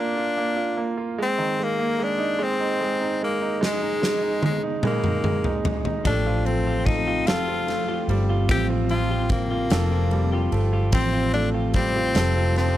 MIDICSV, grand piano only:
0, 0, Header, 1, 2, 480
1, 0, Start_track
1, 0, Tempo, 813008
1, 697, Time_signature, 6, 3, 24, 8
1, 7541, End_track
2, 0, Start_track
2, 0, Title_t, "Grand piano"
2, 0, Program_c, 0, 0
2, 0, Control_c, 0, 64, 127
2, 0, Note_on_c, 0, 58, 68
2, 0, Note_on_c, 0, 65, 55
2, 92, Note_off_c, 0, 65, 0
2, 101, Note_on_c, 0, 65, 57
2, 213, Note_off_c, 0, 58, 0
2, 222, Note_on_c, 0, 58, 59
2, 325, Note_off_c, 0, 65, 0
2, 334, Note_on_c, 0, 65, 55
2, 446, Note_off_c, 0, 58, 0
2, 455, Note_on_c, 0, 58, 62
2, 567, Note_off_c, 0, 65, 0
2, 576, Note_on_c, 0, 65, 59
2, 688, Note_off_c, 0, 58, 0
2, 693, Note_off_c, 0, 65, 0
2, 699, Note_on_c, 0, 56, 71
2, 703, Control_c, 0, 64, 0
2, 812, Control_c, 0, 64, 127
2, 817, Note_on_c, 0, 51, 57
2, 934, Note_off_c, 0, 56, 0
2, 943, Note_on_c, 0, 56, 49
2, 1057, Note_on_c, 0, 58, 59
2, 1166, Note_off_c, 0, 56, 0
2, 1174, Note_on_c, 0, 56, 57
2, 1290, Note_on_c, 0, 63, 65
2, 1401, Note_off_c, 0, 56, 0
2, 1410, Note_on_c, 0, 56, 70
2, 1526, Note_off_c, 0, 63, 0
2, 1535, Note_on_c, 0, 63, 55
2, 1651, Note_off_c, 0, 56, 0
2, 1660, Note_on_c, 0, 56, 63
2, 1753, Note_off_c, 0, 51, 0
2, 1768, Note_off_c, 0, 63, 0
2, 1776, Note_on_c, 0, 63, 59
2, 1894, Note_off_c, 0, 56, 0
2, 1903, Note_on_c, 0, 56, 55
2, 1993, Note_off_c, 0, 58, 0
2, 2007, Note_off_c, 0, 63, 0
2, 2016, Note_on_c, 0, 63, 59
2, 2123, Note_off_c, 0, 56, 0
2, 2132, Note_on_c, 0, 56, 77
2, 2245, Note_off_c, 0, 63, 0
2, 2254, Note_on_c, 0, 63, 56
2, 2363, Note_off_c, 0, 56, 0
2, 2372, Note_on_c, 0, 56, 50
2, 2485, Note_off_c, 0, 63, 0
2, 2494, Note_on_c, 0, 63, 57
2, 2604, Note_off_c, 0, 56, 0
2, 2613, Note_on_c, 0, 56, 55
2, 2725, Note_off_c, 0, 63, 0
2, 2733, Note_on_c, 0, 63, 58
2, 2847, Note_off_c, 0, 56, 0
2, 2856, Note_on_c, 0, 56, 72
2, 2967, Note_off_c, 0, 63, 0
2, 2976, Note_on_c, 0, 63, 57
2, 3089, Note_off_c, 0, 56, 0
2, 3098, Note_on_c, 0, 56, 57
2, 3208, Note_off_c, 0, 63, 0
2, 3216, Note_on_c, 0, 63, 56
2, 3330, Note_off_c, 0, 56, 0
2, 3339, Note_on_c, 0, 56, 56
2, 3450, Note_off_c, 0, 63, 0
2, 3459, Note_on_c, 0, 63, 57
2, 3570, Note_off_c, 0, 56, 0
2, 3574, Note_off_c, 0, 63, 0
2, 3583, Control_c, 0, 64, 0
2, 3583, Note_on_c, 0, 57, 75
2, 3698, Note_on_c, 0, 65, 62
2, 3704, Control_c, 0, 64, 127
2, 3804, Note_off_c, 0, 57, 0
2, 3813, Note_on_c, 0, 57, 50
2, 3929, Note_off_c, 0, 65, 0
2, 3938, Note_on_c, 0, 65, 53
2, 4052, Note_off_c, 0, 57, 0
2, 4061, Note_on_c, 0, 57, 53
2, 4168, Note_off_c, 0, 65, 0
2, 4177, Note_on_c, 0, 65, 60
2, 4300, Note_on_c, 0, 69, 74
2, 4413, Note_off_c, 0, 65, 0
2, 4422, Note_on_c, 0, 65, 59
2, 4528, Note_off_c, 0, 57, 0
2, 4537, Note_on_c, 0, 57, 53
2, 4646, Note_off_c, 0, 65, 0
2, 4655, Note_on_c, 0, 65, 60
2, 4780, Note_on_c, 0, 55, 63
2, 4891, Note_off_c, 0, 65, 0
2, 4899, Note_on_c, 0, 65, 58
2, 5016, Note_on_c, 0, 60, 76
2, 5130, Note_off_c, 0, 65, 0
2, 5139, Note_on_c, 0, 65, 62
2, 5257, Note_on_c, 0, 53, 51
2, 5370, Note_off_c, 0, 65, 0
2, 5379, Note_on_c, 0, 65, 54
2, 5473, Note_off_c, 0, 57, 0
2, 5608, Note_off_c, 0, 65, 0
2, 5617, Note_on_c, 0, 65, 59
2, 5714, Note_off_c, 0, 55, 0
2, 5715, Note_off_c, 0, 69, 0
2, 5736, Note_on_c, 0, 69, 73
2, 5846, Note_off_c, 0, 65, 0
2, 5855, Note_on_c, 0, 65, 54
2, 5976, Note_on_c, 0, 55, 54
2, 6090, Note_off_c, 0, 65, 0
2, 6099, Note_on_c, 0, 65, 58
2, 6193, Note_off_c, 0, 53, 0
2, 6212, Note_on_c, 0, 57, 60
2, 6325, Note_off_c, 0, 65, 0
2, 6334, Note_on_c, 0, 65, 62
2, 6433, Note_off_c, 0, 60, 0
2, 6451, Note_on_c, 0, 60, 75
2, 6563, Note_off_c, 0, 65, 0
2, 6572, Note_on_c, 0, 65, 59
2, 6688, Note_off_c, 0, 57, 0
2, 6697, Note_on_c, 0, 57, 56
2, 6807, Note_off_c, 0, 65, 0
2, 6816, Note_on_c, 0, 65, 59
2, 6913, Note_off_c, 0, 55, 0
2, 6942, Note_on_c, 0, 55, 59
2, 7055, Note_off_c, 0, 65, 0
2, 7063, Note_on_c, 0, 65, 63
2, 7153, Note_off_c, 0, 69, 0
2, 7182, Note_on_c, 0, 69, 71
2, 7296, Note_off_c, 0, 65, 0
2, 7305, Note_on_c, 0, 65, 60
2, 7427, Note_on_c, 0, 53, 55
2, 7541, Note_off_c, 0, 53, 0
2, 7541, Note_off_c, 0, 55, 0
2, 7541, Note_off_c, 0, 57, 0
2, 7541, Note_off_c, 0, 60, 0
2, 7541, Note_off_c, 0, 65, 0
2, 7541, Note_off_c, 0, 69, 0
2, 7541, End_track
0, 0, End_of_file